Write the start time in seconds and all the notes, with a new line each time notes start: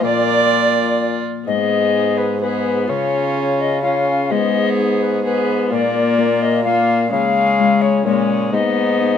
Already playing: F3
0.00 A#2 A#3 F4 A#4
0.04 A#2 F4 D5
1.47 G#2 B3 G#4 D#5
1.95 D#4 G#4 B4
2.18 B4
2.41 B3 D#4 G#4 B4
2.89 C#3 C#4 F4 C#5
3.36 F4 G#4 C#5
3.61 D#5
3.82 C#4 F4 G#4 C#5 F5
4.30 G#2 B3 G#4 D#5
4.78 D#4 G#4 B4
5.00 B4
5.24 B3 D#4 G#4 B4
5.71 A#2 A#3 F4 D5
6.18 A#3 F4 A#4
6.42 D#5
6.64 A#3 F4 A#4 F5
7.11 C#3 G#3 C#4 F5
7.59 G#3 C#4 F4
7.82 C#5
8.05 A#2 G#3 C#4 F4 C#5
8.52 G#2 B3 D#4 D#5
8.99 B3 D#4 G#4